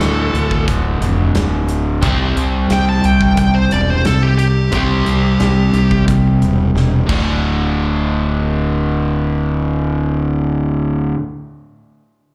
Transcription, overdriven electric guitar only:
0, 0, Header, 1, 2, 480
1, 0, Start_track
1, 0, Tempo, 675676
1, 1439, Time_signature, 4, 2, 24, 8
1, 8772, End_track
2, 0, Start_track
2, 0, Title_t, "Overdriven electric guitar"
2, 0, Program_c, 0, 29
2, 0, Note_on_c, 0, 38, 71
2, 0, Note_on_c, 0, 45, 94
2, 0, Note_on_c, 0, 50, 85
2, 1419, Note_off_c, 0, 38, 0
2, 1428, Note_off_c, 0, 45, 0
2, 1431, Note_on_c, 0, 48, 88
2, 1434, Note_off_c, 0, 50, 0
2, 1446, Note_on_c, 0, 55, 87
2, 1460, Note_on_c, 0, 60, 87
2, 3337, Note_off_c, 0, 48, 0
2, 3344, Note_off_c, 0, 55, 0
2, 3351, Note_off_c, 0, 60, 0
2, 3351, Note_on_c, 0, 48, 72
2, 3370, Note_on_c, 0, 55, 83
2, 3380, Note_on_c, 0, 60, 90
2, 5019, Note_off_c, 0, 48, 0
2, 5022, Note_on_c, 0, 38, 81
2, 5036, Note_off_c, 0, 55, 0
2, 5039, Note_on_c, 0, 45, 96
2, 5047, Note_off_c, 0, 60, 0
2, 5052, Note_on_c, 0, 50, 89
2, 7924, Note_off_c, 0, 38, 0
2, 7940, Note_off_c, 0, 45, 0
2, 7954, Note_off_c, 0, 50, 0
2, 8772, End_track
0, 0, End_of_file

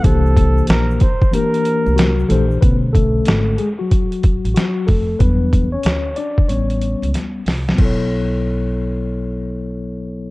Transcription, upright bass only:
0, 0, Header, 1, 2, 480
1, 0, Start_track
1, 0, Tempo, 645161
1, 31, Time_signature, 4, 2, 24, 8
1, 7668, End_track
2, 0, Start_track
2, 0, Title_t, "Upright bass"
2, 0, Program_c, 0, 32
2, 32, Note_on_c, 0, 36, 102
2, 445, Note_off_c, 0, 36, 0
2, 509, Note_on_c, 0, 34, 93
2, 717, Note_off_c, 0, 34, 0
2, 1385, Note_on_c, 0, 36, 82
2, 1666, Note_off_c, 0, 36, 0
2, 1711, Note_on_c, 0, 34, 81
2, 1918, Note_off_c, 0, 34, 0
2, 1953, Note_on_c, 0, 35, 92
2, 2366, Note_off_c, 0, 35, 0
2, 2432, Note_on_c, 0, 32, 91
2, 2639, Note_off_c, 0, 32, 0
2, 3308, Note_on_c, 0, 33, 82
2, 3381, Note_off_c, 0, 33, 0
2, 3635, Note_on_c, 0, 41, 83
2, 3840, Note_off_c, 0, 41, 0
2, 3871, Note_on_c, 0, 40, 93
2, 4285, Note_off_c, 0, 40, 0
2, 4350, Note_on_c, 0, 38, 84
2, 4557, Note_off_c, 0, 38, 0
2, 4833, Note_on_c, 0, 33, 77
2, 5173, Note_off_c, 0, 33, 0
2, 5225, Note_on_c, 0, 37, 89
2, 5299, Note_off_c, 0, 37, 0
2, 5550, Note_on_c, 0, 36, 73
2, 5757, Note_off_c, 0, 36, 0
2, 5791, Note_on_c, 0, 35, 75
2, 7668, Note_off_c, 0, 35, 0
2, 7668, End_track
0, 0, End_of_file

